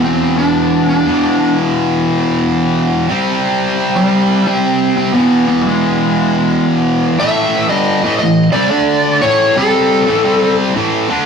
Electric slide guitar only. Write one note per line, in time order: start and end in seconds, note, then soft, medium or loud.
0.04 0.36 C4 loud
0.38 0.88 D4 medium
0.89 1.53 D4 medium
3.96 4.48 G3 medium
4.47 4.96 C4 medium
4.97 5.14 C4 medium
5.14 5.47 B3 loud
5.48 5.61 B3 medium
5.61 5.66 G3 medium
5.67 6.64 G#3 medium
7.20 7.69 E5 loud
7.69 8.17 D#5 loud
8.19 8.52 D#5 loud
8.53 9.21 D5 medium
9.22 9.57 C#5 loud
9.57 10.55 A4 medium